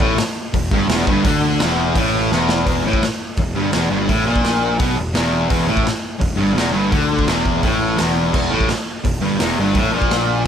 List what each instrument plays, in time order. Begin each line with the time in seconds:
Already playing: distorted electric guitar A2
0.00 picked electric bass A1, kick
0.18 muted picked electric bass stroke, muted distorted electric guitar stroke, snare, open hi-hat
0.54 picked electric bass E1, distorted electric guitar E2, kick, open hi-hat
0.71 picked electric bass G1, distorted electric guitar G2, kick
0.89 picked electric bass E1, distorted electric guitar E2, snare, open hi-hat
1.07 picked electric bass G1, distorted electric guitar G2, kick
1.23 picked electric bass D2, distorted electric guitar D3, kick, open hi-hat
1.59 picked electric bass E1, distorted electric guitar E2, snare, open hi-hat
1.95 picked electric bass A1, distorted electric guitar A2, kick, open hi-hat
2.32 picked electric bass E1, distorted electric guitar E2, snare
2.49 snare
2.66 picked electric bass E1, distorted electric guitar E2, kick, open hi-hat
2.83 picked electric bass A1, distorted electric guitar A2
2.93 kick
3.02 muted picked electric bass stroke, muted distorted electric guitar stroke, snare, open hi-hat
3.37 picked electric bass E1, distorted electric guitar E2, kick, open hi-hat
3.55 picked electric bass G1, distorted electric guitar G2
3.72 picked electric bass E1, distorted electric guitar E2, snare, open hi-hat
3.90 picked electric bass G1, distorted electric guitar G2
4.08 picked electric bass A1, distorted electric guitar A2, kick, open hi-hat
4.26 picked electric bass A#1, distorted electric guitar A#2
4.36 kick
4.44 snare, open hi-hat
4.79 picked electric bass B1, distorted electric guitar B2, kick, open hi-hat
4.96 picked electric bass E1, distorted electric guitar E2
5.14 picked electric bass E1, distorted electric guitar E2, snare, open hi-hat
5.49 picked electric bass E1, distorted electric guitar E2, kick, open hi-hat
5.66 picked electric bass A1, distorted electric guitar A2
5.77 kick
5.84 muted distorted electric guitar stroke, muted picked electric bass stroke, snare, open hi-hat
6.19 picked electric bass E1, distorted electric guitar E2, kick, open hi-hat
6.36 picked electric bass G1, distorted electric guitar G2
6.54 picked electric bass E1, distorted electric guitar E2, open hi-hat
6.58 snare
6.72 picked electric bass G1, distorted electric guitar G2
6.90 picked electric bass D2, distorted electric guitar D3, kick, open hi-hat
7.19 kick
7.26 picked electric bass E1, distorted electric guitar E2, snare, open hi-hat
7.46 kick
7.62 picked electric bass A1, distorted electric guitar A2, kick, open hi-hat
7.97 picked electric bass E1, distorted electric guitar E2, snare, open hi-hat
8.33 picked electric bass E1, distorted electric guitar E2, kick, crash
8.51 picked electric bass A1, distorted electric guitar A2
8.61 kick
8.69 muted picked electric bass stroke, muted distorted electric guitar stroke, snare, open hi-hat
9.04 picked electric bass E1, distorted electric guitar E2, kick, open hi-hat
9.21 picked electric bass G1, distorted electric guitar G2
9.39 picked electric bass E1, distorted electric guitar E2, snare, open hi-hat
9.57 picked electric bass G1, distorted electric guitar G2
9.75 picked electric bass A1, distorted electric guitar A2, kick, open hi-hat
9.93 picked electric bass A#1, distorted electric guitar A#2
10.02 kick
10.11 snare, open hi-hat